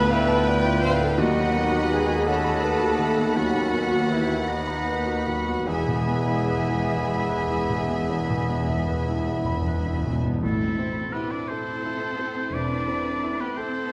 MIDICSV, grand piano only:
0, 0, Header, 1, 2, 480
1, 0, Start_track
1, 0, Tempo, 715137
1, 808, Time_signature, 12, 3, 24, 8
1, 1769, Tempo, 749064
1, 3209, Tempo, 801068
1, 5609, Tempo, 768246
1, 6569, Tempo, 696864
1, 8977, End_track
2, 0, Start_track
2, 0, Title_t, "Grand piano"
2, 0, Program_c, 0, 0
2, 0, Control_c, 0, 64, 127
2, 0, Note_on_c, 0, 38, 77
2, 0, Note_on_c, 0, 45, 67
2, 0, Note_on_c, 0, 59, 65
2, 0, Note_on_c, 0, 65, 67
2, 0, Note_on_c, 0, 69, 64
2, 0, Note_on_c, 0, 71, 70
2, 0, Note_on_c, 0, 77, 82
2, 0, Note_on_c, 0, 81, 77
2, 71, Note_off_c, 0, 77, 0
2, 71, Note_on_c, 0, 77, 71
2, 150, Note_off_c, 0, 71, 0
2, 190, Note_off_c, 0, 81, 0
2, 190, Note_on_c, 0, 81, 73
2, 272, Note_off_c, 0, 77, 0
2, 309, Note_on_c, 0, 71, 67
2, 392, Note_off_c, 0, 81, 0
2, 435, Note_off_c, 0, 65, 0
2, 435, Note_on_c, 0, 65, 60
2, 511, Note_off_c, 0, 71, 0
2, 549, Note_off_c, 0, 45, 0
2, 549, Note_on_c, 0, 45, 65
2, 633, Note_off_c, 0, 65, 0
2, 675, Note_off_c, 0, 59, 0
2, 675, Note_on_c, 0, 59, 59
2, 750, Note_off_c, 0, 45, 0
2, 772, Note_off_c, 0, 38, 0
2, 791, Note_on_c, 0, 39, 85
2, 801, Note_off_c, 0, 59, 0
2, 820, Control_c, 0, 64, 0
2, 823, Note_off_c, 0, 69, 0
2, 920, Note_on_c, 0, 51, 58
2, 928, Control_c, 0, 64, 127
2, 1030, Note_on_c, 0, 59, 63
2, 1117, Note_off_c, 0, 51, 0
2, 1153, Note_on_c, 0, 66, 62
2, 1232, Note_off_c, 0, 59, 0
2, 1273, Note_on_c, 0, 71, 59
2, 1353, Note_off_c, 0, 66, 0
2, 1395, Note_on_c, 0, 66, 61
2, 1472, Note_off_c, 0, 71, 0
2, 1519, Note_on_c, 0, 78, 67
2, 1593, Note_off_c, 0, 66, 0
2, 1639, Note_on_c, 0, 83, 64
2, 1717, Note_off_c, 0, 78, 0
2, 1759, Note_on_c, 0, 71, 56
2, 1836, Note_off_c, 0, 83, 0
2, 1871, Note_on_c, 0, 66, 62
2, 1953, Note_off_c, 0, 71, 0
2, 1994, Note_on_c, 0, 51, 57
2, 2069, Note_off_c, 0, 66, 0
2, 2116, Note_on_c, 0, 59, 56
2, 2191, Note_off_c, 0, 51, 0
2, 2211, Note_off_c, 0, 39, 0
2, 2235, Note_on_c, 0, 39, 63
2, 2312, Note_off_c, 0, 59, 0
2, 2353, Note_on_c, 0, 51, 55
2, 2468, Note_on_c, 0, 59, 49
2, 2549, Note_off_c, 0, 51, 0
2, 2590, Note_on_c, 0, 66, 56
2, 2666, Note_off_c, 0, 59, 0
2, 2708, Note_on_c, 0, 71, 55
2, 2787, Note_off_c, 0, 66, 0
2, 2822, Note_on_c, 0, 66, 57
2, 2907, Note_off_c, 0, 71, 0
2, 2951, Note_on_c, 0, 78, 58
2, 3026, Note_off_c, 0, 66, 0
2, 3074, Note_on_c, 0, 83, 59
2, 3154, Note_off_c, 0, 78, 0
2, 3202, Note_on_c, 0, 71, 56
2, 3275, Note_off_c, 0, 83, 0
2, 3316, Note_on_c, 0, 66, 49
2, 3396, Note_off_c, 0, 71, 0
2, 3440, Note_on_c, 0, 51, 48
2, 3515, Note_off_c, 0, 66, 0
2, 3556, Note_on_c, 0, 59, 45
2, 3638, Note_off_c, 0, 51, 0
2, 3662, Note_off_c, 0, 39, 0
2, 3678, Note_on_c, 0, 40, 65
2, 3684, Note_off_c, 0, 59, 0
2, 3704, Control_c, 0, 64, 0
2, 3802, Note_on_c, 0, 47, 47
2, 3816, Control_c, 0, 64, 127
2, 3921, Note_on_c, 0, 59, 50
2, 3999, Note_off_c, 0, 47, 0
2, 4041, Note_on_c, 0, 64, 47
2, 4118, Note_off_c, 0, 59, 0
2, 4167, Note_on_c, 0, 71, 47
2, 4238, Note_off_c, 0, 64, 0
2, 4292, Note_on_c, 0, 64, 52
2, 4360, Note_off_c, 0, 71, 0
2, 4410, Note_on_c, 0, 76, 60
2, 4482, Note_off_c, 0, 64, 0
2, 4530, Note_on_c, 0, 83, 55
2, 4600, Note_off_c, 0, 76, 0
2, 4651, Note_on_c, 0, 71, 52
2, 4719, Note_off_c, 0, 83, 0
2, 4768, Note_on_c, 0, 64, 53
2, 4840, Note_off_c, 0, 71, 0
2, 4892, Note_on_c, 0, 47, 50
2, 4959, Note_off_c, 0, 64, 0
2, 5007, Note_on_c, 0, 59, 48
2, 5082, Note_off_c, 0, 47, 0
2, 5097, Note_off_c, 0, 40, 0
2, 5133, Note_on_c, 0, 40, 53
2, 5200, Note_off_c, 0, 59, 0
2, 5255, Note_on_c, 0, 47, 49
2, 5370, Note_on_c, 0, 59, 46
2, 5446, Note_off_c, 0, 47, 0
2, 5486, Note_on_c, 0, 64, 50
2, 5563, Note_off_c, 0, 59, 0
2, 5606, Note_on_c, 0, 71, 52
2, 5683, Note_off_c, 0, 64, 0
2, 5726, Note_on_c, 0, 64, 53
2, 5806, Note_off_c, 0, 71, 0
2, 5853, Note_on_c, 0, 76, 54
2, 5925, Note_off_c, 0, 64, 0
2, 5967, Note_on_c, 0, 83, 59
2, 6049, Note_off_c, 0, 76, 0
2, 6101, Note_on_c, 0, 71, 51
2, 6166, Note_off_c, 0, 83, 0
2, 6222, Note_on_c, 0, 64, 53
2, 6294, Note_off_c, 0, 71, 0
2, 6342, Note_on_c, 0, 47, 48
2, 6414, Note_off_c, 0, 64, 0
2, 6458, Note_on_c, 0, 59, 46
2, 6527, Note_off_c, 0, 47, 0
2, 6549, Note_off_c, 0, 40, 0
2, 6571, Note_off_c, 0, 59, 0
2, 6574, Note_on_c, 0, 45, 58
2, 6583, Control_c, 0, 64, 0
2, 6679, Control_c, 0, 64, 127
2, 6820, Note_on_c, 0, 60, 49
2, 7066, Note_on_c, 0, 64, 44
2, 7209, Note_off_c, 0, 60, 0
2, 7314, Note_on_c, 0, 69, 48
2, 7451, Note_off_c, 0, 64, 0
2, 7549, Note_on_c, 0, 64, 45
2, 7693, Note_off_c, 0, 69, 0
2, 7787, Note_on_c, 0, 60, 49
2, 7929, Note_off_c, 0, 64, 0
2, 7995, Note_off_c, 0, 45, 0
2, 8026, Note_on_c, 0, 52, 45
2, 8166, Note_off_c, 0, 60, 0
2, 8260, Note_on_c, 0, 60, 45
2, 8404, Note_off_c, 0, 52, 0
2, 8498, Note_on_c, 0, 64, 50
2, 8640, Note_off_c, 0, 60, 0
2, 8739, Note_on_c, 0, 69, 50
2, 8877, Note_off_c, 0, 64, 0
2, 8977, Note_off_c, 0, 69, 0
2, 8977, End_track
0, 0, End_of_file